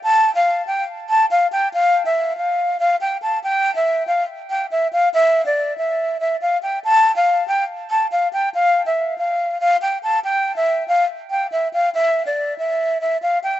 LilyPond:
\new Staff \with { instrumentName = "Flute" } { \time 4/4 \key e \phrygian \tempo 4 = 141 a''8. f''8. g''8 r8 a''8 f''8 g''8 | f''8. e''8. f''4 f''8 g''8 a''8 | g''8. e''8. f''8 r8 g''8 e''8 f''8 | e''8. d''8. e''4 e''8 f''8 g''8 |
a''8. f''8. g''8 r8 a''8 f''8 g''8 | f''8. e''8. f''4 f''8 g''8 a''8 | g''8. e''8. f''8 r8 g''8 e''8 f''8 | e''8. d''8. e''4 e''8 f''8 g''8 | }